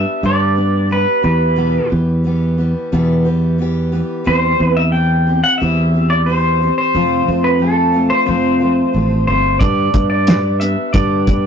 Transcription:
Already playing: G3 B3 D4 G4 E5
0.23 G2 D3 G3 B3 D4 G4 D5
0.55 G3 B3 D4 G4
0.89 G3 B3 D4 G4 B4
1.22 E2 E3 G3 B3 G4 B4
1.56 E2 B2 E3 G3 B3 G4
1.90 E2 E3 G3 B3 G4
2.24 E3 G3 B3 G4
2.57 E3 G3 B3 G4
2.92 E2 B2 E3 G3 B3 G4
3.25 E3 G3 B3 G4
3.58 E3 G3 B3 G4
3.92 E3 G3 B3 G4
4.24 E2 E3 G3 C4 G4 C5
4.59 E2 G3 C4 G4
4.65 B4
4.77 E5
4.92 E3 G3 C4 G4 G5
5.27 G3 C4 G4
5.44 F#5
5.58 E2 E3 G3 E5
5.62 C4 G4
5.94 G3 C4 G4
6.10 D5
6.26 E3 G3 C4 G4 C5
6.61 G3 C4 G4
6.78 C5
6.95 F2 C3 F3 A3 C4 F4
7.28 F2 F3 A3 C4 F4
7.44 B4
7.59 F3 A3 C4 F4 A4
7.93 F3 A3 C4 F4
8.10 C5
8.26 F2 C3 F3 A3 C4 F4 C5
8.60 F3 A3 C4 F4
8.93 A1 F3 A3 C4 F4
9.27 G1 F3 A3 C4 F4 C5
9.59 G2 D3 G3 B3 D4 G4 D5, kick, closed hi-hat
9.93 G2 G3 B3 D4 G4, kick, closed hi-hat
10.10 D5
10.27 G3 B3 D4 G4, snare, closed hi-hat
10.59 G3 B3 D4 G4 E5, closed hi-hat
10.93 G2 D3 G3 B3 D4 G4 D5, kick, closed hi-hat
11.27 G3 B3 D4 G4, kick, closed hi-hat

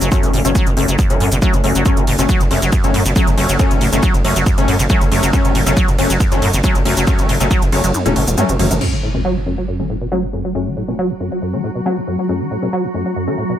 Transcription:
0.01 F#1 F#3, closed hi-hat, shaker
0.12 F#2 F#3 A3 C#4, kick, closed hi-hat, shaker
0.23 F#1 E3, closed hi-hat, shaker
0.33 F#1 A2, open hi-hat
0.45 F#1 B2 F#3 A3 C#4, closed hi-hat, shaker
0.55 F#3, kick, closed hi-hat, shaker
0.67 F#1 F#2, closed hi-hat, shaker
0.77 F#1 F#2 F#3 A3 C#4, open hi-hat
0.88 F#1 F#3, closed hi-hat, shaker
0.99 F#2, kick, closed hi-hat, shaker
1.10 F#1 E3 F#3 A3 C#4, closed hi-hat, shaker
1.20 F#2 A2, open hi-hat
1.32 F#1 B2, closed hi-hat, shaker
1.42 F#3 A3 C#4, kick, closed hi-hat, shaker
1.53 F#1 F#2, closed hi-hat, shaker
1.64 F#1 F#2 F#3 A3 C#4, open hi-hat
1.75 F#1 F#3, closed hi-hat, shaker
1.85 F#2 F#3 A3 C#4, kick, closed hi-hat, shaker
1.97 F#1 E3, closed hi-hat, shaker
2.07 F#1 A2, open hi-hat, ride
2.19 F#1 B2 F#3 A3 C#4, closed hi-hat, shaker
2.29 F#3, kick, closed hi-hat, shaker
2.40 F#1 F#2, closed hi-hat, shaker
2.51 F#1 F#2 F#3 A3 C#4, open hi-hat, ride
2.62 F#1 F#3, closed hi-hat, shaker
2.72 F#2, kick, closed hi-hat, shaker
2.84 F#1 E3 F#3 A3 C#4, closed hi-hat, shaker
2.94 F#2 A2, open hi-hat, ride
3.05 F#1 B2, closed hi-hat, shaker
3.16 F#3 A3 C#4, kick, closed hi-hat, shaker
3.27 F#1 F#2, closed hi-hat, shaker
3.38 F#1 F#2 F#3 A3 C#4, open hi-hat, ride
3.49 F#1 F#3, closed hi-hat, shaker
3.59 F#2 F#3 A3 C#4, kick, closed hi-hat, shaker
3.71 F#1 E3, closed hi-hat, shaker
3.81 F#1 A2, open hi-hat, ride
3.93 F#1 B2 F#3 A3 C#4, closed hi-hat, shaker
4.03 F#3, kick, closed hi-hat, shaker
4.14 F#1 F#2, closed hi-hat, shaker
4.25 F#1 F#2 F#3 A3 C#4, open hi-hat, ride
4.36 F#1 F#3, closed hi-hat, shaker
4.46 F#2, kick, closed hi-hat, shaker
4.58 F#1 E3 F#3 A3 C#4, closed hi-hat, shaker
4.68 F#2 A2, open hi-hat, ride
4.79 F#1 B2, closed hi-hat, shaker
4.90 F#3 A3 C#4, kick, closed hi-hat, shaker
5.01 F#1 F#2, closed hi-hat, shaker
5.12 F#1 F#2 F#3 A3 C#4, open hi-hat, ride
5.23 F#1 F#3, closed hi-hat, shaker
5.33 F#2 F#3 A3 C#4, kick, closed hi-hat, shaker
5.45 F#1 E3, closed hi-hat, shaker
5.55 F#1 A2, open hi-hat, ride
5.66 F#1 B2 F#3 A3 C#4, closed hi-hat, shaker
5.77 F#3, kick, closed hi-hat, shaker
5.88 F#1 F#2, closed hi-hat, shaker
5.99 F#1 F#2 F#3 A3 C#4, open hi-hat, ride
6.10 F#1 F#3, closed hi-hat, shaker
6.20 F#2, kick, closed hi-hat, shaker
6.32 F#1 E3 F#3 A3 C#4, closed hi-hat, shaker
6.42 F#2 A2, open hi-hat, ride
6.53 F#1 B2, closed hi-hat, shaker
6.64 F#3 A3 C#4, kick, closed hi-hat, shaker
6.75 F#1 F#2, closed hi-hat, shaker
6.85 F#1 F#2 F#3 A3 C#4, open hi-hat, ride
6.97 F#1 F#3, closed hi-hat, shaker
7.07 F#2 F#3 A3 C#4, kick, closed hi-hat, shaker
7.19 F#1 E3, closed hi-hat, shaker
7.29 F#1 A2, open hi-hat, ride
7.40 F#1 B2 F#3 A3 C#4, closed hi-hat, shaker
7.51 F#3, kick, closed hi-hat, shaker
7.62 F#1 F#2, closed hi-hat, shaker
7.72 F#1 F#2 F#3 A3 C#4, open hi-hat, ride
7.84 F#1 F#3, closed hi-hat, shaker
7.94 F#2, closed hi-hat, high tom, shaker
8.06 E1 E3 F#3 A3 C#4, closed hi-hat, high tom, shaker
8.16 F#1 A2, open hi-hat, ride
8.27 E1 B2, closed hi-hat, mid tom, shaker
8.38 G2 F#3 A3 C#4, closed hi-hat, mid tom, shaker
8.49 F#1 C3, closed hi-hat, shaker
8.59 F#1 F#2 F#3 A3 C#4, mid tom, open hi-hat, ride
8.71 F#1 F#2, closed hi-hat, mid tom, shaker
8.81 F#2 F#3 A3 C#4 F#4, crash, impact
8.93 E3
9.03 A2
9.14 B2 F#3 A3 C#4
9.25 F#3
9.36 F#2
9.46 F#2 F#3 A3 C#4
9.58 F#3
9.68 F#2
9.80 E3 F#3 A3 C#4
9.90 A2
10.01 B2
10.12 F#3 A3 C#4
10.23 F#2
10.33 F#2 F#3 A3 C#4
10.45 F#3
10.55 F#2 F#3 A3 C#4
10.67 E3
10.77 A2
10.88 B2 F#3 A3 C#4
10.99 F#3
11.10 F#2
11.20 F#2 F#3 A3 C#4
11.32 F#3
11.42 F#2
11.54 E3 F#3 A3 C#4
11.64 A2
11.75 B2
11.86 F#3 A3 C#4
11.97 F#2
12.07 F#2 F#3 A3 C#4
12.19 F#3
12.29 F#2 F#3 A3 C#4
12.41 E3
12.51 A2
12.62 B2 F#3 A3 C#4
12.73 F#3
12.84 F#2
12.94 F#2 F#3 A3 C#4
13.06 F#3
13.16 F#2
13.27 E3 F#3 A3 C#4
13.38 A2
13.49 B2

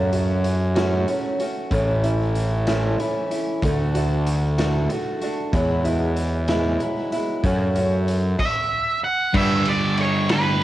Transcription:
Already playing: F#2 C#3 F#3 A3 C#4 F#4
0.12 F#3 A3 C#4 F#4, closed hi-hat
0.44 closed hi-hat
0.75 F#2 C#3 F#3 A3 C#4 F#4, snare, closed hi-hat
1.08 F#3 A3 C#4 F#4, closed hi-hat
1.40 F#3 A3 C#4 F#4, closed hi-hat
1.71 A1 A2 E3 A3 C#4 E4, kick, closed hi-hat
2.04 A3 C#4 E4, closed hi-hat
2.35 closed hi-hat
2.67 A2 E3 A3 C#4 E4, snare, closed hi-hat
2.99 E3 A3 C#4 E4, closed hi-hat
3.31 A3 C#4 E4, closed hi-hat
3.62 D2 D3 A3 D4 F#4, kick, closed hi-hat
3.94 A3 D4 F#4, closed hi-hat
4.26 closed hi-hat
4.58 D3 A3 D4 F#4, snare, closed hi-hat
4.90 D3 A3 D4 F#4, closed hi-hat
5.21 A3 D4 F#4, closed hi-hat
5.53 E2 B2 F#3 G#3 B3 E4, kick, closed hi-hat
5.84 F#3 G#3 B3 E4, closed hi-hat
6.16 closed hi-hat
6.48 E2 B2 F#3 G#3 B3 E4, snare, closed hi-hat
6.80 F#3 G#3 B3 E4, closed hi-hat
7.12 F#3 G#3 B3 E4, closed hi-hat
7.44 F#2 C#3 F#3 A3 C#4 F#4, kick, closed hi-hat
7.75 F#3 A3 C#4 F#4, closed hi-hat
8.08 closed hi-hat
8.39 E5, kick, crash
9.04 F#5
9.34 G2 D3 G3 E5, kick, crash
9.66 D5, ride
9.98 C#5, ride
10.29 D3 G3 B4, snare, ride
10.33 G2

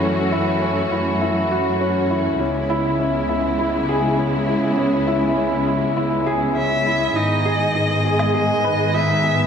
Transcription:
Already playing: F#2 E3 A3 C#4 E4 F#4
0.02 C#4
0.32 E4
0.62 C#4
0.92 E4
1.21 E4
1.51 F#4
1.81 C#4
2.10 E4
2.40 C#2 C#3 G#3 B3 C#4 E4
2.70 E4
2.99 C#4
3.29 E4
3.59 E4
3.89 G#4
4.18 C#4
4.48 E4
4.78 C#4
5.07 E4
5.37 C#4
5.67 E4
5.97 E4
6.27 G#4
6.56 C#4 E5
6.86 E4
7.15 G#2 D#3 G#3 B3 D#4 G#4 D#5
7.45 G#4
7.75 D#4
8.05 G#4
8.19 low woodblock
8.34 G#4 D#5
8.64 B4
8.94 D#4 E5
9.24 G#4

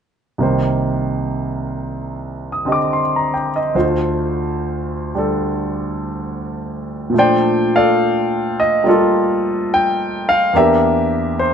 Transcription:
0.38 C2 C3 D#3 A#3
0.43 C5
2.52 D#6
2.65 D3 C4 G4 D#5
2.72 D6
2.93 C6
3.16 A#5
3.34 G5
3.56 D#5
3.75 D2 D3 A3 F4 C5
5.15 D3 G3 D4 A4
7.10 A#2 F3
7.14 A3 D4
7.18 C5 D5 G5
7.76 A4 D5 F5
8.60 D#5
8.84 G3 A#3 F4 D5
8.88 F4 A4
9.74 G5
10.29 F5
10.53 E2 E3 A#3 G4 A#4 E5
10.58 D4
11.39 C5

